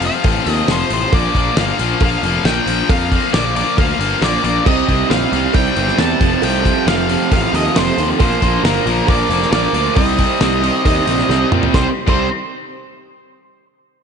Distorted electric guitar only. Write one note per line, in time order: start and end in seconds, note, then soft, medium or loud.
0.01 0.23 F2 medium
0.01 0.24 C3 medium
0.01 0.25 F3 loud
0.24 0.45 F2 loud
0.24 0.46 C3 loud
0.24 0.47 F3 loud
0.46 0.67 F2 medium
0.46 0.69 C3 medium
0.46 0.69 F3 medium
0.68 0.90 F2 loud
0.68 0.91 C3 loud
0.68 0.91 F3 loud
0.91 1.12 F2 medium
0.91 1.12 C3 loud
0.91 1.13 F3 loud
1.12 1.36 A#2 loud
1.12 1.36 F3 loud
1.12 1.37 A#3 loud
1.36 1.57 A#2 medium
1.36 1.58 F3 medium
1.36 1.58 A#3 loud
1.58 1.79 A#2 medium
1.58 1.80 F3 loud
1.58 1.80 A#3 loud
1.80 2.02 A#2 medium
1.80 2.02 F3 loud
1.80 2.02 A#3 loud
2.03 2.23 A#2 loud
2.03 2.24 F3 loud
2.03 2.25 A#3 loud
2.24 2.44 A#2 medium
2.24 2.45 F3 medium
2.24 2.45 A#3 loud
2.45 2.67 A#2 loud
2.45 2.67 F3 loud
2.45 2.67 A#3 loud
2.68 2.89 A#2 loud
2.68 2.89 F3 medium
2.68 2.90 A#3 loud
2.90 3.11 A#2 medium
2.90 3.12 F3 loud
2.90 3.12 A#3 medium
3.12 3.32 A#2 medium
3.12 3.33 F3 medium
3.12 3.33 A#3 medium
3.34 3.54 A#2 loud
3.34 3.56 F3 loud
3.34 3.56 A#3 loud
3.56 3.77 A#2 medium
3.56 3.77 F3 medium
3.56 3.78 A#3 medium
3.78 3.99 A#2 medium
3.78 4.00 F3 loud
3.78 3.99 A#3 loud
4.00 4.21 A#2 medium
4.00 4.22 F3 medium
4.00 4.21 A#3 loud
4.22 4.42 A#2 medium
4.22 4.42 F3 loud
4.22 4.43 A#3 loud
4.43 4.64 A#2 medium
4.43 4.64 F3 loud
4.43 4.65 A#3 loud
4.66 4.86 C3 medium
4.66 4.88 G3 medium
4.66 4.88 C4 loud
4.87 5.07 C3 medium
4.87 5.09 G3 medium
4.87 5.09 C4 loud
5.09 5.31 C3 medium
5.09 5.32 G3 loud
5.09 5.33 C4 loud
5.32 5.52 C3 medium
5.32 5.53 G3 medium
5.32 5.53 C4 loud
5.54 5.74 C3 loud
5.54 5.75 G3 loud
5.54 5.75 C4 loud
5.75 5.97 C3 medium
5.75 5.98 G3 medium
5.75 5.98 C4 loud
5.98 6.19 C3 loud
5.98 6.20 G3 loud
5.98 6.20 C4 loud
6.20 6.42 F2 loud
6.20 6.42 C3 loud
6.20 6.43 F3 loud
6.43 6.63 F2 medium
6.43 6.64 C3 loud
6.43 6.65 F3 loud
6.65 6.84 F2 medium
6.65 6.85 C3 medium
6.65 6.85 F3 medium
6.85 7.07 F2 medium
6.85 7.08 C3 loud
6.85 7.09 F3 loud
7.08 7.30 F2 medium
7.08 7.31 C3 medium
7.08 7.31 F3 loud
7.32 7.52 F2 loud
7.32 7.53 C3 loud
7.32 7.53 F3 loud
7.53 7.74 F2 medium
7.53 7.74 C3 medium
7.53 7.75 F3 loud
7.75 7.95 F2 loud
7.75 7.96 C3 loud
7.75 7.97 F3 loud
7.97 8.18 F2 medium
7.97 8.18 C3 medium
7.97 8.18 F3 loud
8.18 8.40 A#2 loud
8.18 8.41 F3 loud
8.18 8.42 A#3 loud
8.42 8.62 A#2 medium
8.42 8.63 F3 medium
8.42 8.63 A#3 medium
8.64 8.84 A#2 loud
8.64 8.84 F3 loud
8.64 8.85 A#3 loud
8.85 9.07 A#2 medium
8.85 9.07 F3 medium
8.85 9.08 A#3 loud
9.08 9.29 A#2 loud
9.08 9.30 F3 loud
9.08 9.30 A#3 loud
9.30 9.51 A#2 medium
9.30 9.52 F3 medium
9.30 9.52 A#3 loud
9.52 9.73 A#2 loud
9.52 9.74 F3 loud
9.52 9.74 A#3 loud
9.75 9.96 A#2 loud
9.75 9.96 F3 loud
9.75 9.96 A#3 loud
9.97 10.17 C3 medium
9.97 10.18 G3 loud
9.97 10.18 C4 loud
10.18 10.39 C3 medium
10.18 10.39 G3 medium
10.18 10.40 C4 loud
10.40 10.62 C3 loud
10.40 10.63 G3 medium
10.40 10.63 C4 loud
10.63 10.85 C3 medium
10.63 10.85 G3 loud
10.63 10.86 C4 loud
10.86 11.06 C3 loud
10.86 11.06 G3 loud
10.86 11.08 C4 loud
11.07 11.29 C3 medium
11.07 11.29 G3 medium
11.07 11.30 C4 medium
11.30 11.52 C3 loud
11.30 11.52 G3 loud
11.30 11.53 C4 loud
11.53 11.73 C3 medium
11.53 11.73 G3 loud
11.53 11.74 C4 medium
11.74 11.87 C3 medium
11.74 11.88 G3 loud
11.74 11.88 C4 loud
12.07 12.25 C3 medium
12.07 12.25 G3 medium
12.07 12.26 C4 loud